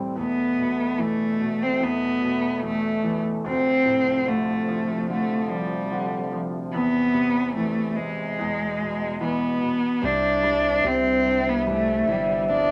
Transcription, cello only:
0, 0, Header, 1, 2, 480
1, 0, Start_track
1, 0, Tempo, 821918
1, 94, Time_signature, 4, 2, 24, 8
1, 7424, End_track
2, 0, Start_track
2, 0, Title_t, "Cello"
2, 0, Program_c, 0, 42
2, 119, Note_on_c, 0, 59, 69
2, 588, Note_on_c, 0, 57, 73
2, 597, Note_off_c, 0, 59, 0
2, 949, Note_on_c, 0, 60, 73
2, 957, Note_off_c, 0, 57, 0
2, 1073, Note_on_c, 0, 59, 79
2, 1082, Note_off_c, 0, 60, 0
2, 1544, Note_off_c, 0, 59, 0
2, 1550, Note_on_c, 0, 57, 85
2, 1878, Note_off_c, 0, 57, 0
2, 2028, Note_on_c, 0, 60, 81
2, 2499, Note_on_c, 0, 57, 67
2, 2508, Note_off_c, 0, 60, 0
2, 2977, Note_off_c, 0, 57, 0
2, 2979, Note_on_c, 0, 57, 70
2, 3214, Note_on_c, 0, 55, 69
2, 3223, Note_off_c, 0, 57, 0
2, 3694, Note_off_c, 0, 55, 0
2, 3936, Note_on_c, 0, 59, 86
2, 4391, Note_off_c, 0, 59, 0
2, 4409, Note_on_c, 0, 57, 73
2, 4647, Note_on_c, 0, 56, 75
2, 4656, Note_off_c, 0, 57, 0
2, 5370, Note_off_c, 0, 56, 0
2, 5391, Note_on_c, 0, 59, 78
2, 5869, Note_on_c, 0, 62, 74
2, 5878, Note_off_c, 0, 59, 0
2, 6350, Note_on_c, 0, 60, 77
2, 6358, Note_off_c, 0, 62, 0
2, 6709, Note_on_c, 0, 59, 66
2, 6718, Note_off_c, 0, 60, 0
2, 6821, Note_off_c, 0, 59, 0
2, 6836, Note_on_c, 0, 57, 79
2, 7073, Note_on_c, 0, 55, 71
2, 7081, Note_off_c, 0, 57, 0
2, 7303, Note_off_c, 0, 55, 0
2, 7311, Note_on_c, 0, 62, 88
2, 7424, Note_off_c, 0, 62, 0
2, 7424, End_track
0, 0, End_of_file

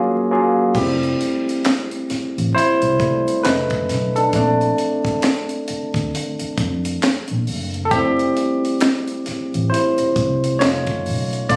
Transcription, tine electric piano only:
0, 0, Header, 1, 2, 480
1, 0, Start_track
1, 0, Key_signature, -1, "major"
1, 0, Tempo, 895522
1, 403, Time_signature, 4, 2, 24, 8
1, 6197, End_track
2, 0, Start_track
2, 0, Title_t, "Tine electric piano"
2, 0, Program_c, 0, 4
2, 0, Note_on_c, 0, 54, 76
2, 0, Note_on_c, 0, 58, 66
2, 0, Note_on_c, 0, 61, 72
2, 0, Note_on_c, 0, 65, 74
2, 0, Note_on_c, 0, 68, 79
2, 23, Control_c, 0, 64, 127
2, 125, Note_off_c, 0, 54, 0
2, 126, Note_off_c, 0, 58, 0
2, 127, Note_off_c, 0, 61, 0
2, 128, Note_off_c, 0, 65, 0
2, 130, Note_off_c, 0, 68, 0
2, 167, Note_on_c, 0, 54, 67
2, 168, Note_on_c, 0, 58, 63
2, 170, Note_on_c, 0, 61, 59
2, 173, Note_on_c, 0, 65, 60
2, 174, Note_on_c, 0, 68, 69
2, 368, Note_off_c, 0, 54, 0
2, 368, Note_off_c, 0, 58, 0
2, 369, Note_off_c, 0, 61, 0
2, 370, Note_off_c, 0, 65, 0
2, 371, Note_off_c, 0, 68, 0
2, 402, Note_on_c, 0, 55, 57
2, 406, Note_on_c, 0, 57, 51
2, 406, Note_on_c, 0, 67, 86
2, 409, Note_on_c, 0, 64, 60
2, 410, Note_on_c, 0, 60, 70
2, 411, Control_c, 0, 64, 0
2, 520, Control_c, 0, 64, 127
2, 1101, Note_off_c, 0, 55, 0
2, 1103, Note_off_c, 0, 57, 0
2, 1104, Note_off_c, 0, 64, 0
2, 1345, Note_off_c, 0, 60, 0
2, 1364, Note_on_c, 0, 72, 110
2, 1370, Note_on_c, 0, 64, 85
2, 1393, Note_off_c, 0, 67, 0
2, 1603, Note_off_c, 0, 64, 0
2, 1606, Note_on_c, 0, 55, 50
2, 1606, Note_on_c, 0, 57, 46
2, 1609, Note_on_c, 0, 64, 50
2, 1823, Note_off_c, 0, 55, 0
2, 1823, Note_off_c, 0, 57, 0
2, 1825, Note_off_c, 0, 64, 0
2, 1841, Note_on_c, 0, 71, 91
2, 1844, Note_on_c, 0, 57, 56
2, 1847, Note_on_c, 0, 61, 51
2, 1849, Control_c, 0, 64, 0
2, 1851, Note_on_c, 0, 63, 73
2, 1858, Note_off_c, 0, 72, 0
2, 1938, Control_c, 0, 64, 127
2, 2228, Note_on_c, 0, 69, 83
2, 2236, Note_off_c, 0, 71, 0
2, 2240, Note_on_c, 0, 62, 69
2, 2302, Note_off_c, 0, 57, 0
2, 2304, Note_off_c, 0, 61, 0
2, 2305, Note_off_c, 0, 63, 0
2, 2330, Note_off_c, 0, 62, 0
2, 2330, Note_on_c, 0, 57, 54
2, 2331, Control_c, 0, 64, 0
2, 2334, Note_on_c, 0, 60, 46
2, 2336, Note_on_c, 0, 62, 67
2, 2418, Control_c, 0, 64, 127
2, 3025, Note_off_c, 0, 57, 0
2, 3027, Note_off_c, 0, 60, 0
2, 3028, Note_off_c, 0, 62, 0
2, 3165, Note_off_c, 0, 69, 0
2, 4209, Note_on_c, 0, 69, 86
2, 4240, Note_on_c, 0, 67, 114
2, 4241, Note_off_c, 0, 69, 0
2, 4244, Note_on_c, 0, 55, 62
2, 4248, Note_on_c, 0, 57, 52
2, 4250, Control_c, 0, 64, 0
2, 4251, Note_on_c, 0, 60, 82
2, 4252, Note_on_c, 0, 64, 61
2, 4347, Control_c, 0, 64, 127
2, 4940, Note_off_c, 0, 67, 0
2, 4945, Note_off_c, 0, 60, 0
2, 5197, Note_on_c, 0, 72, 80
2, 5202, Note_off_c, 0, 64, 0
2, 5208, Note_on_c, 0, 64, 55
2, 5662, Note_off_c, 0, 55, 0
2, 5664, Note_off_c, 0, 57, 0
2, 5664, Note_off_c, 0, 64, 0
2, 5677, Note_on_c, 0, 73, 86
2, 5682, Note_on_c, 0, 57, 48
2, 5685, Note_on_c, 0, 61, 51
2, 5689, Control_c, 0, 64, 0
2, 5689, Note_on_c, 0, 63, 56
2, 5690, Note_on_c, 0, 65, 60
2, 5694, Note_off_c, 0, 72, 0
2, 5777, Control_c, 0, 64, 127
2, 6019, Note_off_c, 0, 57, 0
2, 6020, Note_off_c, 0, 61, 0
2, 6022, Note_off_c, 0, 63, 0
2, 6145, Note_off_c, 0, 65, 0
2, 6160, Note_on_c, 0, 74, 97
2, 6162, Note_on_c, 0, 57, 52
2, 6164, Note_on_c, 0, 60, 49
2, 6169, Control_c, 0, 64, 0
2, 6171, Note_on_c, 0, 62, 63
2, 6171, Note_on_c, 0, 65, 77
2, 6175, Note_off_c, 0, 73, 0
2, 6197, Note_off_c, 0, 57, 0
2, 6197, Note_off_c, 0, 60, 0
2, 6197, Note_off_c, 0, 62, 0
2, 6197, Note_off_c, 0, 65, 0
2, 6197, Note_off_c, 0, 74, 0
2, 6197, End_track
0, 0, End_of_file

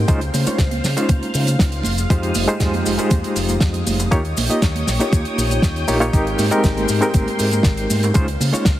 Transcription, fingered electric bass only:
0, 0, Header, 1, 3, 480
1, 0, Start_track
1, 0, Key_signature, -4, "major"
1, 0, Tempo, 504202
1, 79, Time_signature, 4, 2, 24, 8
1, 8373, End_track
2, 0, Start_track
2, 0, Title_t, "Fingered electric bass"
2, 0, Program_c, 0, 33
2, 80, Note_on_c, 0, 37, 95
2, 273, Note_off_c, 0, 37, 0
2, 320, Note_on_c, 0, 49, 87
2, 418, Note_off_c, 0, 49, 0
2, 560, Note_on_c, 0, 37, 91
2, 753, Note_off_c, 0, 37, 0
2, 799, Note_on_c, 0, 49, 82
2, 897, Note_off_c, 0, 49, 0
2, 1041, Note_on_c, 0, 37, 85
2, 1138, Note_off_c, 0, 37, 0
2, 1280, Note_on_c, 0, 49, 94
2, 1472, Note_off_c, 0, 49, 0
2, 1522, Note_on_c, 0, 37, 84
2, 1713, Note_off_c, 0, 37, 0
2, 1758, Note_on_c, 0, 29, 89
2, 1951, Note_off_c, 0, 29, 0
2, 2001, Note_on_c, 0, 41, 95
2, 2193, Note_off_c, 0, 41, 0
2, 2241, Note_on_c, 0, 29, 84
2, 2338, Note_off_c, 0, 29, 0
2, 2481, Note_on_c, 0, 41, 96
2, 2673, Note_off_c, 0, 41, 0
2, 2717, Note_on_c, 0, 29, 83
2, 2816, Note_off_c, 0, 29, 0
2, 2962, Note_on_c, 0, 41, 84
2, 3058, Note_off_c, 0, 41, 0
2, 3198, Note_on_c, 0, 29, 93
2, 3391, Note_off_c, 0, 29, 0
2, 3441, Note_on_c, 0, 41, 83
2, 3633, Note_off_c, 0, 41, 0
2, 3679, Note_on_c, 0, 29, 85
2, 3872, Note_off_c, 0, 29, 0
2, 3920, Note_on_c, 0, 39, 96
2, 4112, Note_off_c, 0, 39, 0
2, 4161, Note_on_c, 0, 34, 86
2, 4258, Note_off_c, 0, 34, 0
2, 4401, Note_on_c, 0, 39, 92
2, 4593, Note_off_c, 0, 39, 0
2, 4641, Note_on_c, 0, 34, 84
2, 4738, Note_off_c, 0, 34, 0
2, 4881, Note_on_c, 0, 39, 86
2, 4978, Note_off_c, 0, 39, 0
2, 5118, Note_on_c, 0, 34, 93
2, 5312, Note_off_c, 0, 34, 0
2, 5361, Note_on_c, 0, 39, 82
2, 5553, Note_off_c, 0, 39, 0
2, 5601, Note_on_c, 0, 34, 84
2, 5793, Note_off_c, 0, 34, 0
2, 5840, Note_on_c, 0, 32, 93
2, 6032, Note_off_c, 0, 32, 0
2, 6078, Note_on_c, 0, 44, 87
2, 6177, Note_off_c, 0, 44, 0
2, 6320, Note_on_c, 0, 32, 92
2, 6512, Note_off_c, 0, 32, 0
2, 6560, Note_on_c, 0, 44, 85
2, 6658, Note_off_c, 0, 44, 0
2, 6799, Note_on_c, 0, 32, 85
2, 6897, Note_off_c, 0, 32, 0
2, 7041, Note_on_c, 0, 44, 96
2, 7233, Note_off_c, 0, 44, 0
2, 7280, Note_on_c, 0, 32, 84
2, 7473, Note_off_c, 0, 32, 0
2, 7520, Note_on_c, 0, 44, 87
2, 7712, Note_off_c, 0, 44, 0
2, 7761, Note_on_c, 0, 37, 92
2, 7953, Note_off_c, 0, 37, 0
2, 7998, Note_on_c, 0, 49, 89
2, 8097, Note_off_c, 0, 49, 0
2, 8241, Note_on_c, 0, 37, 92
2, 8373, Note_off_c, 0, 37, 0
2, 8373, End_track
3, 0, Start_track
3, 0, Title_t, "Muted fingered electric bass strokes"
3, 442, Note_on_c, 9, 29, 40
3, 537, Note_off_c, 9, 29, 0
3, 4285, Note_on_c, 9, 29, 41
3, 4380, Note_off_c, 9, 29, 0
3, 8121, Note_on_c, 9, 29, 42
3, 8216, Note_off_c, 9, 29, 0
3, 8373, End_track
0, 0, End_of_file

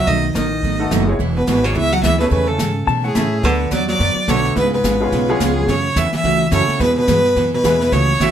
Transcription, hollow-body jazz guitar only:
0, 0, Header, 1, 2, 480
1, 0, Start_track
1, 0, Tempo, 280505
1, 125, Time_signature, 4, 2, 24, 8
1, 14223, End_track
2, 0, Start_track
2, 0, Title_t, "Hollow-body jazz guitar"
2, 0, Program_c, 0, 26
2, 130, Note_on_c, 0, 51, 76
2, 594, Note_off_c, 0, 51, 0
2, 615, Note_on_c, 0, 51, 74
2, 1785, Note_off_c, 0, 51, 0
2, 2340, Note_on_c, 0, 47, 70
2, 2516, Note_off_c, 0, 47, 0
2, 2541, Note_on_c, 0, 47, 75
2, 2808, Note_off_c, 0, 47, 0
2, 2808, Note_on_c, 0, 49, 71
2, 3003, Note_off_c, 0, 49, 0
2, 3015, Note_on_c, 0, 52, 81
2, 3292, Note_off_c, 0, 52, 0
2, 3292, Note_on_c, 0, 54, 86
2, 3485, Note_off_c, 0, 54, 0
2, 3494, Note_on_c, 0, 52, 83
2, 3754, Note_off_c, 0, 52, 0
2, 3775, Note_on_c, 0, 47, 77
2, 3953, Note_off_c, 0, 47, 0
2, 3973, Note_on_c, 0, 49, 73
2, 4233, Note_off_c, 0, 49, 0
2, 4260, Note_on_c, 0, 49, 71
2, 4929, Note_off_c, 0, 49, 0
2, 5216, Note_on_c, 0, 45, 67
2, 5895, Note_off_c, 0, 45, 0
2, 5895, Note_on_c, 0, 50, 63
2, 6369, Note_off_c, 0, 50, 0
2, 6380, Note_on_c, 0, 54, 73
2, 6637, Note_off_c, 0, 54, 0
2, 6654, Note_on_c, 0, 54, 71
2, 7279, Note_off_c, 0, 54, 0
2, 7344, Note_on_c, 0, 50, 79
2, 7814, Note_off_c, 0, 50, 0
2, 7823, Note_on_c, 0, 44, 73
2, 8079, Note_off_c, 0, 44, 0
2, 8111, Note_on_c, 0, 44, 76
2, 8993, Note_off_c, 0, 44, 0
2, 9079, Note_on_c, 0, 41, 73
2, 9731, Note_off_c, 0, 41, 0
2, 9731, Note_on_c, 0, 49, 73
2, 10233, Note_off_c, 0, 49, 0
2, 10233, Note_on_c, 0, 52, 75
2, 10495, Note_off_c, 0, 52, 0
2, 10515, Note_on_c, 0, 52, 78
2, 11130, Note_off_c, 0, 52, 0
2, 11186, Note_on_c, 0, 49, 77
2, 11622, Note_off_c, 0, 49, 0
2, 11677, Note_on_c, 0, 47, 74
2, 11925, Note_off_c, 0, 47, 0
2, 11947, Note_on_c, 0, 47, 76
2, 12830, Note_off_c, 0, 47, 0
2, 12908, Note_on_c, 0, 47, 80
2, 13526, Note_off_c, 0, 47, 0
2, 13591, Note_on_c, 0, 49, 78
2, 14070, Note_off_c, 0, 49, 0
2, 14070, Note_on_c, 0, 52, 82
2, 14223, Note_off_c, 0, 52, 0
2, 14223, End_track
0, 0, End_of_file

